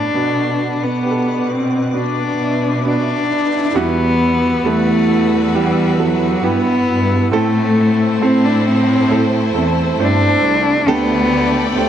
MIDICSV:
0, 0, Header, 1, 7, 480
1, 0, Start_track
1, 0, Key_signature, 1, "minor"
1, 0, Tempo, 898204
1, 82, Time_signature, 4, 2, 24, 8
1, 3443, Tempo, 887574
1, 6388, End_track
2, 0, Start_track
2, 0, Title_t, "Ambient pad"
2, 0, Program_c, 0, 92
2, 0, Note_on_c, 0, 69, 75
2, 0, Note_on_c, 0, 81, 63
2, 0, Note_on_c, 0, 83, 76
2, 63, Note_off_c, 0, 69, 0
2, 63, Note_off_c, 0, 81, 0
2, 64, Note_off_c, 0, 83, 0
2, 76, Note_on_c, 0, 71, 73
2, 78, Note_on_c, 0, 78, 71
2, 78, Note_on_c, 0, 86, 75
2, 1024, Note_off_c, 0, 78, 0
2, 1032, Note_on_c, 0, 76, 61
2, 1980, Note_off_c, 0, 71, 0
2, 1981, Note_off_c, 0, 86, 0
2, 1991, Note_off_c, 0, 76, 0
2, 1998, Note_on_c, 0, 78, 70
2, 1999, Note_on_c, 0, 64, 78
2, 2001, Note_on_c, 0, 88, 85
2, 3900, Note_off_c, 0, 64, 0
2, 3900, Note_off_c, 0, 78, 0
2, 3921, Note_on_c, 0, 72, 84
2, 3924, Note_on_c, 0, 81, 75
2, 5820, Note_off_c, 0, 88, 0
2, 5823, Note_off_c, 0, 72, 0
2, 5824, Note_off_c, 0, 81, 0
2, 5839, Note_on_c, 0, 79, 80
2, 5840, Note_on_c, 0, 69, 80
2, 5843, Note_on_c, 0, 86, 88
2, 6388, Note_off_c, 0, 69, 0
2, 6388, Note_off_c, 0, 79, 0
2, 6388, Note_off_c, 0, 86, 0
2, 6388, End_track
3, 0, Start_track
3, 0, Title_t, "Violin section"
3, 0, Program_c, 1, 48
3, 2003, Note_on_c, 1, 66, 81
3, 2004, Note_on_c, 1, 59, 81
3, 2004, Note_on_c, 1, 71, 89
3, 3900, Note_off_c, 1, 66, 0
3, 3900, Note_off_c, 1, 71, 0
3, 3901, Note_off_c, 1, 59, 0
3, 3918, Note_on_c, 1, 64, 85
3, 3921, Note_on_c, 1, 57, 86
3, 3921, Note_on_c, 1, 72, 96
3, 5819, Note_off_c, 1, 64, 0
3, 5820, Note_off_c, 1, 57, 0
3, 5820, Note_off_c, 1, 72, 0
3, 5844, Note_on_c, 1, 57, 95
3, 5845, Note_on_c, 1, 79, 93
3, 5846, Note_on_c, 1, 74, 108
3, 6388, Note_off_c, 1, 57, 0
3, 6388, Note_off_c, 1, 74, 0
3, 6388, Note_off_c, 1, 79, 0
3, 6388, End_track
4, 0, Start_track
4, 0, Title_t, "Grand piano"
4, 0, Program_c, 2, 0
4, 0, Control_c, 2, 64, 127
4, 0, Note_on_c, 2, 57, 56
4, 0, Note_on_c, 2, 59, 56
4, 0, Note_on_c, 2, 66, 68
4, 0, Note_on_c, 2, 67, 66
4, 56, Note_off_c, 2, 57, 0
4, 59, Note_off_c, 2, 59, 0
4, 61, Note_off_c, 2, 67, 0
4, 77, Note_on_c, 2, 59, 59
4, 79, Note_on_c, 2, 62, 51
4, 80, Note_on_c, 2, 47, 47
4, 85, Note_off_c, 2, 66, 0
4, 85, Note_on_c, 2, 66, 60
4, 90, Control_c, 2, 64, 0
4, 189, Control_c, 2, 64, 127
4, 532, Note_off_c, 2, 59, 0
4, 533, Note_off_c, 2, 62, 0
4, 536, Note_off_c, 2, 66, 0
4, 551, Note_on_c, 2, 71, 58
4, 555, Note_on_c, 2, 62, 54
4, 559, Note_on_c, 2, 67, 53
4, 593, Note_off_c, 2, 67, 0
4, 595, Note_on_c, 2, 69, 66
4, 775, Note_off_c, 2, 47, 0
4, 1008, Note_off_c, 2, 71, 0
4, 1010, Note_off_c, 2, 62, 0
4, 1029, Note_on_c, 2, 59, 55
4, 1030, Note_off_c, 2, 69, 0
4, 1035, Note_on_c, 2, 62, 55
4, 1039, Note_on_c, 2, 66, 62
4, 1490, Note_off_c, 2, 59, 0
4, 1493, Note_off_c, 2, 62, 0
4, 1495, Note_off_c, 2, 66, 0
4, 1515, Note_on_c, 2, 59, 56
4, 1518, Note_on_c, 2, 62, 51
4, 1523, Note_on_c, 2, 66, 58
4, 1977, Note_off_c, 2, 59, 0
4, 1979, Note_off_c, 2, 62, 0
4, 1981, Note_off_c, 2, 66, 0
4, 1999, Note_on_c, 2, 55, 85
4, 2002, Note_on_c, 2, 59, 72
4, 2003, Note_on_c, 2, 52, 57
4, 2006, Note_on_c, 2, 64, 78
4, 2008, Note_on_c, 2, 66, 89
4, 2009, Control_c, 2, 64, 0
4, 2092, Control_c, 2, 64, 127
4, 2458, Note_off_c, 2, 55, 0
4, 2459, Note_off_c, 2, 59, 0
4, 2462, Note_off_c, 2, 64, 0
4, 2462, Note_off_c, 2, 66, 0
4, 2480, Note_on_c, 2, 55, 73
4, 2483, Note_on_c, 2, 59, 67
4, 2486, Note_on_c, 2, 64, 62
4, 2489, Note_on_c, 2, 69, 77
4, 2703, Note_off_c, 2, 52, 0
4, 2937, Note_off_c, 2, 55, 0
4, 2938, Note_off_c, 2, 59, 0
4, 2940, Note_off_c, 2, 64, 0
4, 2942, Note_off_c, 2, 69, 0
4, 2959, Note_on_c, 2, 55, 71
4, 2961, Note_on_c, 2, 59, 65
4, 2965, Note_on_c, 2, 64, 61
4, 2966, Note_on_c, 2, 67, 78
4, 3188, Note_off_c, 2, 55, 0
4, 3189, Note_off_c, 2, 59, 0
4, 3191, Note_off_c, 2, 64, 0
4, 3192, Note_off_c, 2, 67, 0
4, 3196, Note_on_c, 2, 54, 60
4, 3199, Note_on_c, 2, 59, 58
4, 3202, Note_on_c, 2, 64, 62
4, 3204, Note_on_c, 2, 69, 72
4, 3426, Note_off_c, 2, 54, 0
4, 3427, Note_off_c, 2, 59, 0
4, 3429, Note_off_c, 2, 64, 0
4, 3430, Note_off_c, 2, 69, 0
4, 3432, Note_on_c, 2, 55, 69
4, 3435, Note_on_c, 2, 59, 63
4, 3439, Note_on_c, 2, 64, 65
4, 3441, Note_on_c, 2, 67, 76
4, 3893, Note_off_c, 2, 55, 0
4, 3895, Note_off_c, 2, 59, 0
4, 3897, Note_off_c, 2, 64, 0
4, 3898, Note_off_c, 2, 67, 0
4, 3915, Note_on_c, 2, 57, 88
4, 3918, Note_on_c, 2, 60, 83
4, 3919, Note_on_c, 2, 45, 59
4, 3921, Note_on_c, 2, 64, 81
4, 3924, Note_on_c, 2, 69, 101
4, 3927, Control_c, 2, 64, 0
4, 4035, Control_c, 2, 64, 127
4, 4374, Note_off_c, 2, 57, 0
4, 4376, Note_off_c, 2, 60, 0
4, 4378, Note_off_c, 2, 64, 0
4, 4379, Note_off_c, 2, 69, 0
4, 4399, Note_on_c, 2, 57, 75
4, 4402, Note_on_c, 2, 60, 66
4, 4404, Note_on_c, 2, 64, 67
4, 4407, Note_on_c, 2, 69, 83
4, 4620, Note_off_c, 2, 45, 0
4, 4857, Note_off_c, 2, 57, 0
4, 4858, Note_off_c, 2, 60, 0
4, 4859, Note_off_c, 2, 64, 0
4, 4861, Note_off_c, 2, 69, 0
4, 4879, Note_on_c, 2, 57, 76
4, 4880, Note_on_c, 2, 60, 69
4, 4883, Note_on_c, 2, 64, 68
4, 4887, Note_on_c, 2, 69, 83
4, 5108, Note_off_c, 2, 57, 0
4, 5108, Note_off_c, 2, 60, 0
4, 5110, Note_off_c, 2, 64, 0
4, 5112, Note_off_c, 2, 69, 0
4, 5116, Note_on_c, 2, 57, 65
4, 5119, Note_on_c, 2, 60, 64
4, 5121, Note_on_c, 2, 64, 62
4, 5124, Note_on_c, 2, 69, 74
4, 5347, Note_off_c, 2, 57, 0
4, 5349, Note_off_c, 2, 60, 0
4, 5350, Note_off_c, 2, 64, 0
4, 5351, Note_off_c, 2, 69, 0
4, 5358, Note_on_c, 2, 57, 74
4, 5360, Note_on_c, 2, 59, 53
4, 5364, Note_on_c, 2, 64, 70
4, 5366, Note_on_c, 2, 72, 79
4, 5396, Note_off_c, 2, 59, 0
4, 5396, Note_on_c, 2, 60, 68
4, 5816, Note_off_c, 2, 57, 0
4, 5819, Note_off_c, 2, 64, 0
4, 5820, Note_off_c, 2, 72, 0
4, 5835, Note_off_c, 2, 60, 0
4, 5835, Note_on_c, 2, 57, 91
4, 5837, Note_on_c, 2, 62, 83
4, 5839, Note_on_c, 2, 50, 64
4, 5840, Note_on_c, 2, 67, 91
4, 5842, Note_on_c, 2, 69, 109
4, 5849, Control_c, 2, 64, 0
4, 5954, Control_c, 2, 64, 127
4, 6292, Note_off_c, 2, 57, 0
4, 6293, Note_off_c, 2, 62, 0
4, 6295, Note_off_c, 2, 67, 0
4, 6296, Note_off_c, 2, 69, 0
4, 6314, Note_on_c, 2, 57, 74
4, 6319, Note_on_c, 2, 62, 67
4, 6321, Note_on_c, 2, 67, 67
4, 6324, Note_on_c, 2, 72, 80
4, 6388, Note_off_c, 2, 50, 0
4, 6388, Note_off_c, 2, 57, 0
4, 6388, Note_off_c, 2, 62, 0
4, 6388, Note_off_c, 2, 67, 0
4, 6388, Note_off_c, 2, 72, 0
4, 6388, End_track
5, 0, Start_track
5, 0, Title_t, "Cello"
5, 0, Program_c, 3, 42
5, 0, Note_on_c, 3, 62, 90
5, 448, Note_on_c, 3, 59, 78
5, 456, Note_off_c, 3, 62, 0
5, 808, Note_on_c, 3, 60, 79
5, 816, Note_off_c, 3, 59, 0
5, 1047, Note_on_c, 3, 62, 76
5, 1055, Note_off_c, 3, 60, 0
5, 1522, Note_off_c, 3, 62, 0
5, 1525, Note_on_c, 3, 62, 86
5, 2009, Note_on_c, 3, 59, 100
5, 2017, Note_off_c, 3, 62, 0
5, 2490, Note_on_c, 3, 57, 103
5, 2498, Note_off_c, 3, 59, 0
5, 2967, Note_on_c, 3, 55, 92
5, 2975, Note_off_c, 3, 57, 0
5, 3206, Note_on_c, 3, 54, 86
5, 3214, Note_off_c, 3, 55, 0
5, 3441, Note_on_c, 3, 59, 95
5, 3450, Note_off_c, 3, 54, 0
5, 3918, Note_off_c, 3, 59, 0
5, 3922, Note_on_c, 3, 57, 97
5, 4406, Note_on_c, 3, 60, 94
5, 4414, Note_off_c, 3, 57, 0
5, 4529, Note_on_c, 3, 62, 91
5, 4538, Note_off_c, 3, 60, 0
5, 4613, Note_off_c, 3, 62, 0
5, 4613, Note_on_c, 3, 62, 66
5, 4648, Note_on_c, 3, 60, 96
5, 4656, Note_off_c, 3, 62, 0
5, 5124, Note_off_c, 3, 60, 0
5, 5374, Note_on_c, 3, 62, 111
5, 5853, Note_on_c, 3, 59, 115
5, 5861, Note_off_c, 3, 62, 0
5, 6289, Note_off_c, 3, 59, 0
5, 6289, Note_on_c, 3, 59, 72
5, 6329, Note_on_c, 3, 57, 110
5, 6337, Note_off_c, 3, 59, 0
5, 6388, Note_off_c, 3, 57, 0
5, 6388, End_track
6, 0, Start_track
6, 0, Title_t, "Cello section"
6, 0, Program_c, 4, 48
6, 0, Note_on_c, 4, 45, 78
6, 65, Note_off_c, 4, 45, 0
6, 79, Note_on_c, 4, 47, 90
6, 416, Note_off_c, 4, 47, 0
6, 436, Note_on_c, 4, 47, 75
6, 1253, Note_off_c, 4, 47, 0
6, 1274, Note_on_c, 4, 47, 83
6, 1738, Note_off_c, 4, 47, 0
6, 2004, Note_on_c, 4, 40, 87
6, 2463, Note_off_c, 4, 40, 0
6, 2482, Note_on_c, 4, 40, 94
6, 3418, Note_off_c, 4, 40, 0
6, 3440, Note_on_c, 4, 43, 93
6, 3664, Note_off_c, 4, 43, 0
6, 3682, Note_on_c, 4, 43, 91
6, 3905, Note_off_c, 4, 43, 0
6, 3925, Note_on_c, 4, 45, 109
6, 4382, Note_off_c, 4, 45, 0
6, 4401, Note_on_c, 4, 45, 110
6, 5100, Note_off_c, 4, 45, 0
6, 5122, Note_on_c, 4, 40, 95
6, 5345, Note_off_c, 4, 40, 0
6, 5361, Note_on_c, 4, 43, 93
6, 5585, Note_off_c, 4, 43, 0
6, 5602, Note_on_c, 4, 36, 96
6, 5825, Note_off_c, 4, 36, 0
6, 5844, Note_on_c, 4, 38, 119
6, 6299, Note_off_c, 4, 38, 0
6, 6321, Note_on_c, 4, 38, 102
6, 6388, Note_off_c, 4, 38, 0
6, 6388, End_track
7, 0, Start_track
7, 0, Title_t, "Riser"
7, 0, Program_c, 5, 103
7, 80, Note_on_c, 5, 60, 62
7, 2001, Note_off_c, 5, 60, 0
7, 6388, End_track
0, 0, End_of_file